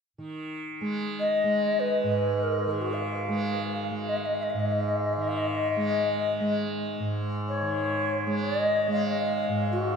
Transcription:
0.18 tanpura D#3
0.81 tanpura G#3
1.19 native american-style wooden flute D#5
1.44 tanpura G#3
1.80 native american-style wooden flute B4
2.04 tanpura G#2
2.43 native american-style wooden flute A#4
2.59 native american-style wooden flute G#4
2.67 tanpura D#3, native american-style wooden flute G#4 A#4
2.81 native american-style wooden flute F#4
2.93 native american-style wooden flute F5
3.28 tanpura G#3
3.91 tanpura G#3
4.09 native american-style wooden flute D#5
4.16 native american-style wooden flute F5
4.25 native american-style wooden flute D#5
4.34 native american-style wooden flute F5
4.43 native american-style wooden flute D#5
4.50 native american-style wooden flute F5
4.54 tanpura G#2
4.59 native american-style wooden flute D#5
4.65 native american-style wooden flute F5
4.72 native american-style wooden flute D#5
4.80 native american-style wooden flute F5
4.88 native american-style wooden flute D#5
4.96 native american-style wooden flute F5
5.06 native american-style wooden flute D#5
5.13 native american-style wooden flute F5
5.17 tanpura D#3
5.22 native american-style wooden flute D#5
5.28 native american-style wooden flute F5
5.38 native american-style wooden flute D#5
5.47 native american-style wooden flute F5
5.54 native american-style wooden flute D#5
5.76 tanpura G#3
6.40 tanpura G#3
7.00 tanpura G#2
7.48 native american-style wooden flute C#5
7.62 tanpura D#3
8.26 tanpura G#3
8.45 native american-style wooden flute D#5
8.88 tanpura G#3
8.92 native american-style wooden flute F5
9.49 tanpura G#2
9.72 native american-style wooden flute F#4

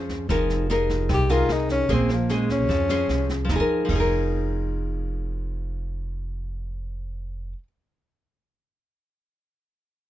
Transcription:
Already playing: upright bass F2, nylon-string guitar F3 C#4 G#4 C5
0.09 kick, snare
0.29 upright bass F1, nylon-string guitar F3 D#4 G#4 A#4, kick, cross-stick, snare
0.50 snare
0.70 nylon-string guitar D#4 G#4 A#4, snare
0.89 kick, snare
1.09 upright bass C2, nylon-string guitar C3, kick, cross-stick, snare
1.13 tenor saxophone G4
1.30 nylon-string guitar D#4 G#4 A#4, tenor saxophone F4, snare
1.49 upright bass C2, cross-stick, snare
1.53 tenor saxophone D#4
1.69 tenor saxophone C#4, kick, snare
1.89 upright bass A#1, nylon-string guitar A#3 C#4 G#4 C5, kick, snare
1.93 tenor saxophone C4
2.09 tenor saxophone F3, cross-stick, snare
2.29 nylon-string guitar C#4 G#4 C5, snare
2.34 tenor saxophone G#3
2.49 tenor saxophone C#4, kick, snare
2.69 upright bass F2, nylon-string guitar F3, kick, snare
2.89 nylon-string guitar C#4 G#4 C5, cross-stick, snare
3.09 upright bass C2, snare
3.29 kick, snare
3.45 nylon-string guitar F3
3.49 upright bass F1, nylon-string guitar D#4, kick, snare
3.56 nylon-string guitar G#4
3.60 nylon-string guitar A#4
3.85 nylon-string guitar F3, crash
3.89 upright bass F1, nylon-string guitar D#4, kick
3.95 nylon-string guitar G#4
4.00 nylon-string guitar A#4

